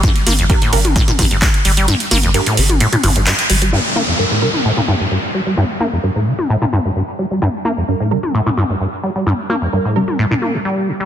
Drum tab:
RD |xxxxxxxxxxxxxxxx|xxxxxxxxxxxxxxxx|----------------|----------------|
HH |xxoxxxoxxxoxxxox|xxoxxxoxxxoxxxox|----------------|----------------|
CP |------------x---|------------x---|----------------|----------------|
T2 |o-o----o-oo-----|o-o----o-oo-----|o-o----o-oo-----|o-o----o-oo-----|
BD |o---o---o-o-o---|----------------|----------------|----------------|

RD |----------------|----------------|
HH |----------------|----------------|
CP |----------------|----------------|
T2 |o-o----o-oo-----|o-o----o-oo-----|
BD |----------------|----------------|